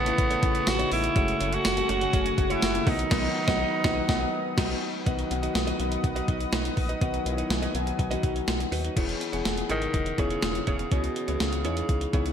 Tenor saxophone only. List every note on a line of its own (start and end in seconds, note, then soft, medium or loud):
0.00 0.70 B3 loud
0.68 0.92 F#4 loud
0.93 1.56 E4 loud
1.54 1.90 F#4 loud
1.90 2.53 F#4 loud
2.51 2.89 E4 loud
2.88 4.82 D#4 medium
9.71 10.21 D#3 loud
10.20 10.68 C#3 medium
10.68 10.94 C#3 medium
10.93 11.43 B2 medium
11.41 12.33 C#3 medium